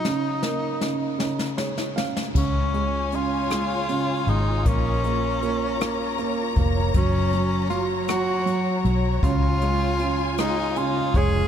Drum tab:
CC |------------|x-----------|------------|------------|
HH |------------|--x-x-x-x-x-|x-x-x-x-x-x-|x-x-x-x-x-x-|
SD |o-o-o-oooooo|------r-----|------r-----|------r-----|
BD |------------|o-----------|o---------o-|o-----------|

CC |------------|
HH |x-x-x-x-x-x-|
SD |------r-----|
BD |o---------o-|